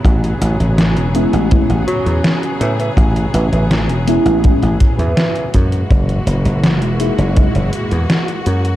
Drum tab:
HH |xxxxxxxxxxxxxxxx|xxxxxxxxxxxxxxxx|xxxxxxxxxxxxxxxx|
SD |----o-------o---|----o-------o---|----o-------o---|
BD |o-------o-------|o-------o-o---o-|o-------o-------|